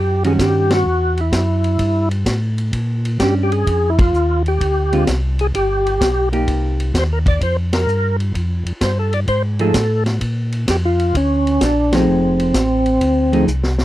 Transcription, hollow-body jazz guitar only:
0.24 0.83 D#3 soft
0.24 0.83 G3 medium
0.24 0.83 C#4 medium
0.24 0.84 F#4 medium
3.21 3.93 C#4 medium
3.21 3.93 D4 medium
4.92 5.06 D3 medium
4.92 5.06 G#3 medium
4.92 5.06 C4 medium
4.92 5.06 F4 medium
6.32 6.91 A#3 medium
6.32 6.91 D#4 medium
6.32 6.92 G4 medium
9.60 9.73 F3 medium
9.60 9.73 A3 medium
9.60 9.73 D#4 medium
9.60 9.74 G#4 medium
11.93 12.52 F3 medium
11.93 12.52 A3 medium
11.93 12.52 D#4 medium
11.93 12.52 G#4 medium
13.33 13.46 F3 medium
13.33 13.46 A3 medium
13.33 13.47 D#4 medium
13.33 13.47 G#4 medium

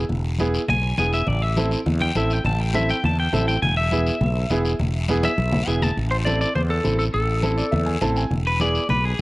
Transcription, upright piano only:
0.40 0.60 B3 medium
0.40 0.60 E4 medium
0.40 0.60 G#4 loud
0.99 1.19 B3 medium
0.99 1.19 E4 medium
0.99 1.19 G#4 medium
1.57 1.77 C4 medium
1.57 1.77 E4 medium
1.57 1.78 A4 medium
2.15 2.36 C4 medium
2.15 2.36 E4 medium
2.15 2.36 A4 medium
2.74 2.94 C4 medium
2.74 2.95 E4 medium
2.74 2.95 A4 medium
3.33 3.53 C4 medium
3.33 3.53 E4 medium
3.33 3.54 A4 medium
3.92 4.12 B3 medium
3.92 4.12 E4 medium
3.92 4.12 G#4 medium
4.50 4.71 B3 medium
4.50 4.71 E4 medium
4.50 4.71 G#4 loud
5.09 5.29 B3 loud
5.09 5.30 E4 medium
5.09 5.30 G#4 loud
5.67 5.88 B3 medium
5.67 5.88 E4 medium
5.67 5.88 G#4 medium
6.26 6.46 C4 medium
6.26 6.47 E4 medium
6.26 6.47 A4 medium
6.84 7.05 C4 medium
6.84 7.05 E4 medium
6.84 7.05 A4 medium
7.43 7.63 C4 medium
7.43 7.63 E4 medium
7.43 7.64 A4 medium
7.57 7.71 D5 medium
7.72 7.85 E5 medium
7.86 8.00 G#5 medium
8.01 8.22 C4 medium
8.01 8.22 E4 medium
8.01 8.22 A4 loud
8.01 8.15 A5 medium
8.17 8.31 G#5 medium
8.61 8.81 B3 medium
8.61 8.81 E4 medium
8.61 8.81 G#4 medium

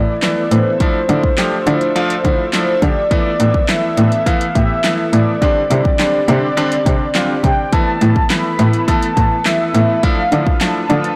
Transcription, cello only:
0.51 0.59 A2 medium
1.09 1.17 D3 loud
1.67 1.75 D3 loud
2.25 2.33 D3 medium
2.82 2.90 D3 medium
3.40 3.48 A2 loud
3.98 4.06 A2 loud
4.55 4.63 A2 medium
5.13 5.21 A2 medium
5.71 5.79 C3 loud
6.28 6.36 C3 loud
6.86 6.94 C3 medium
7.44 7.52 C3 medium
8.01 8.09 A2 loud
8.59 8.67 A2 loud
9.17 9.25 A2 medium
9.74 9.82 A2 medium
10.32 10.40 D3 loud
10.90 10.98 D3 loud

